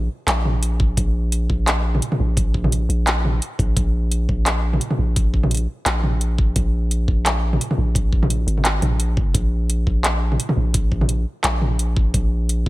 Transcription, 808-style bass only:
0.27 0.96 A#1 loud
0.97 1.48 A#1 loud
1.50 2.01 A#1 loud
2.20 2.88 A#1 loud
2.89 3.40 A#1 loud
3.59 3.75 A#1 medium
3.77 4.28 A#1 loud
4.29 4.80 A#1 loud
4.99 5.67 A#1 medium
5.86 6.54 A#1 loud
6.56 7.07 A#1 loud
7.08 7.59 A#1 loud
7.78 8.46 A#1 loud
8.47 8.81 G#1 loud
8.82 9.33 A#1 loud
9.34 9.86 A#1 loud
9.87 10.38 A#1 loud
10.57 11.25 A#1 loud
11.44 12.13 A#1 loud
12.14 12.65 A#1 loud

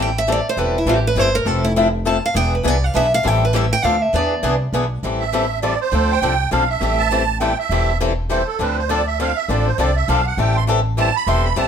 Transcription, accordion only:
5.20 5.59 E5 medium
5.62 5.80 D5 medium
5.81 6.20 C5 medium
6.12 6.50 G5 loud
6.52 6.69 F5 medium
6.69 7.08 E5 medium
6.99 7.38 A5 loud
7.40 7.58 G5 medium
7.59 7.98 E5 medium
8.30 8.47 C5 medium
8.47 8.59 A4 medium
8.61 8.78 B4 medium
8.78 8.90 C5 medium
8.89 9.06 D5 medium
9.06 9.19 E5 medium
9.20 9.37 F5 medium
9.36 9.48 E5 medium
9.49 9.66 D5 medium
9.66 9.78 C5 medium
9.78 9.96 D5 medium
9.96 10.08 E5 medium
10.09 10.26 F5 medium
10.27 10.38 F#5 medium
10.40 10.57 G5 medium
10.57 10.64 C6 medium
10.99 11.16 A5 medium
11.16 11.28 B5 loud
11.28 11.45 C6 medium
11.44 11.57 B5 medium
11.58 11.68 A5 medium

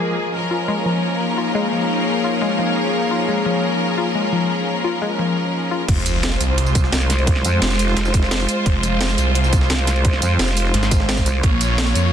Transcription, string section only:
0.00 0.30 F3 medium
0.00 0.31 A#3 medium
0.00 0.30 G#4 medium
0.34 5.85 F3 medium
0.34 5.85 C#4 medium
0.34 5.84 A#4 medium
5.88 11.39 F4 medium
11.43 12.13 A#3 medium
11.43 12.13 F4 medium
11.43 12.13 C#5 loud

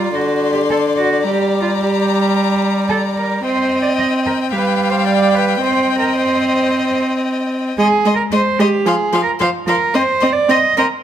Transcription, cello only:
0.00 0.16 F4 medium
0.15 0.52 F#4 medium
0.53 0.60 G4 medium
0.70 0.78 A4 medium
0.97 1.24 F#4 medium
1.25 1.61 G4 medium
1.62 1.69 F4 medium
1.80 2.61 G4 medium
2.89 2.97 A4 medium
3.17 3.44 A#4 medium
3.45 3.80 C5 medium
3.82 3.89 D5 medium
3.99 4.07 D#5 medium
4.26 4.34 A#4 medium
4.53 4.91 B4 medium
4.90 5.06 C5 medium
5.07 5.36 D5 medium
5.35 5.61 B4 medium
5.62 5.97 C5 medium
5.99 6.15 A#4 medium
6.16 6.95 C5 medium
7.78 8.12 G#4 loud
8.15 8.22 A#4 medium
8.33 8.61 C5 medium
8.59 8.88 G4 medium
8.86 9.22 G#4 medium
9.23 9.30 A#4 medium
9.41 9.49 C5 loud
9.67 9.96 A#4 loud
9.95 10.34 C5 loud
10.32 10.51 D5 loud
10.50 10.77 D#5 loud
10.78 10.86 A#4 loud

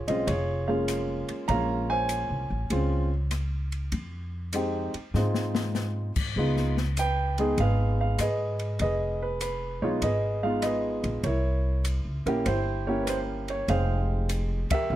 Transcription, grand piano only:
0.00 0.27 G#4 medium
0.08 0.26 G#3 medium
0.08 0.26 C4 medium
0.08 0.26 C#4 medium
0.08 0.27 F4 medium
0.08 0.28 D#5 medium
0.27 0.68 F4 medium
0.27 0.67 G#4 medium
0.27 0.68 C#5 medium
0.68 1.45 G#3 medium
0.68 1.45 A#3 medium
0.68 1.46 C#4 medium
0.68 1.46 F4 medium
0.68 1.87 G#4 soft
0.68 1.48 C#5 medium
0.68 1.25 F5 medium
1.48 2.43 G#3 medium
1.48 2.44 A#3 soft
1.48 2.44 C#4 soft
1.48 2.44 F4 medium
1.48 1.90 C#5 medium
1.48 2.68 F5 medium
1.48 1.91 A#5 loud
1.90 3.09 C5 medium
1.90 3.09 C#5 medium
1.90 3.08 G#5 loud
2.71 3.08 G#3 medium
2.71 3.08 C4 medium
2.71 3.08 C#4 medium
2.71 3.09 F4 medium
4.54 4.91 G#3 medium
4.54 4.91 C4 medium
4.54 4.91 D#4 medium
4.54 4.92 G4 medium
5.15 6.09 G#3 medium
5.15 6.09 C4 medium
5.15 6.09 D#4 medium
5.15 6.09 F4 medium
6.37 6.74 G#3 medium
6.37 6.74 B3 medium
6.37 6.74 D#4 medium
6.37 6.75 F4 medium
6.99 7.60 B4 medium
6.99 7.61 G5 loud
7.39 8.16 G#3 medium
7.39 8.16 B3 medium
7.39 8.16 D#4 medium
7.39 7.61 G#4 medium
7.60 8.21 G#4 medium
7.60 8.21 B4 medium
7.60 7.98 F5 loud
8.01 8.19 F5 medium
8.21 8.82 G#4 medium
8.21 8.81 B4 medium
8.21 8.77 D#5 medium
8.81 10.00 G#4 medium
8.81 9.21 B4 medium
8.81 9.19 D#5 medium
9.22 9.40 B4 medium
9.42 9.84 B4 medium
9.82 10.00 G#3 medium
9.82 10.01 B3 medium
9.82 10.01 D#4 medium
9.82 10.01 F4 medium
9.82 9.87 C#5 medium
10.03 10.64 G#4 medium
10.03 10.64 B4 medium
10.03 10.45 D#5 medium
10.43 11.21 G#3 medium
10.43 11.21 B3 medium
10.43 11.21 D#4 medium
10.43 11.22 F4 medium
10.43 10.62 F5 medium
10.63 11.22 G#4 medium
10.63 11.22 B4 medium
10.63 11.26 D#5 medium
11.24 12.26 E4 medium
11.24 12.25 A#4 soft
11.24 11.82 C#5 medium
12.26 12.45 A#3 medium
12.26 12.45 C#4 medium
12.26 12.45 E4 medium
12.26 12.46 G4 medium
12.26 12.47 A#4 medium
12.46 12.87 E4 medium
12.46 12.87 G4 medium
12.46 12.85 C5 medium
12.87 13.65 A#3 medium
12.87 13.65 C#4 medium
12.87 13.65 E4 medium
12.87 13.66 G4 medium
12.87 13.04 C#5 medium
13.03 13.08 B4 medium
13.08 13.18 C5 medium
13.50 13.68 C#5 medium
13.68 14.63 G#3 medium
13.68 14.63 C4 soft
13.68 14.63 D#4 soft
13.68 14.88 G#4 medium
13.68 14.88 C5 medium
13.68 14.27 F5 medium
13.68 14.64 G5 medium
14.71 14.92 G4 medium
14.71 14.96 A#4 medium
14.71 14.96 E5 loud
14.91 14.96 A#3 medium
14.91 14.96 C#4 medium
14.91 14.96 E4 medium

